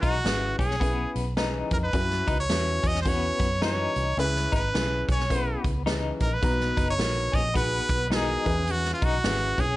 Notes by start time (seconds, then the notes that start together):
Already playing: E3 C#4 E4 G#4 B4
0.01 B1 D#4 F#4, kick, closed hi-hat
0.24 G#1 C#4 E4 G#4 B4, snare, closed hi-hat
0.59 B1 C#4 G#4, kick, closed hi-hat
0.71 snare
0.80 B3 C#4 E4 G#4 B4, kick, closed hi-hat
1.15 B1, closed hi-hat
1.37 E3 C#4 D#4 G#4 B4, snare, closed hi-hat
1.71 F2 A#4, kick, closed hi-hat
1.84 B4
1.93 F#2 C#4 E4 F#4 B4, kick, closed hi-hat
2.10 snare
2.27 C#2 D#4, kick, closed hi-hat
2.40 C#5
2.49 E2 C#4 E4 F#4 B4, snare, closed hi-hat
2.83 E2 C#4 D#5, kick, closed hi-hat
2.95 snare
3.02 B3 C#4 E4 C5, kick, closed hi-hat
3.06 F#4 B4 C#5
3.40 F#2, kick, closed hi-hat
3.61 E3 C#4 D#4 F#4 B4 C#5, snare, closed hi-hat
3.96 C2, closed hi-hat
4.17 C#2 C#3 C#4 E4 G#4 B4, closed hi-hat
4.36 snare
4.52 G#1 D#4 B4, kick, closed hi-hat
4.74 B1 C#4 E4 G#4 B4, snare, closed hi-hat
5.08 B1 C#4 C#5, kick, closed hi-hat
5.20 snare
5.29 B3 C#4 E4 G#4 B4, kick, closed hi-hat
5.64 C#2, kick, closed hi-hat
5.86 E3 C#4 D#4 G#4 B4, snare, closed hi-hat
6.20 A#1 A#4, kick, closed hi-hat
6.33 B4
6.42 B1 B2 B3 D#4 F#4 A#5, kick, closed hi-hat, muted conga
6.60 snare
6.77 F#1 D#4, kick, closed hi-hat, muted conga
6.90 C#5
6.98 A#1 B3 D#4 F#4 A#4, snare, closed hi-hat, high conga
7.32 A#1 C#4 D#5, kick, closed hi-hat, low conga
7.54 B3 D#4 F#4 G#4 B4, kick, closed hi-hat, low conga
7.89 B1, kick, closed hi-hat
8.10 B3 D#4 F#4 A#4, snare, closed hi-hat, high conga
8.15 G#4
8.45 E2 E3 C#4 E4 G#4 B4, kick, closed hi-hat, high conga
8.67 F#4, closed hi-hat, muted conga
8.85 snare
8.94 F4
9.01 B1 D#4 F#4, kick, closed hi-hat, muted conga
9.24 G#1 C#4 E4 G#4 B4, snare, closed hi-hat, high conga
9.58 B1 C#4 G#4, kick, closed hi-hat, low conga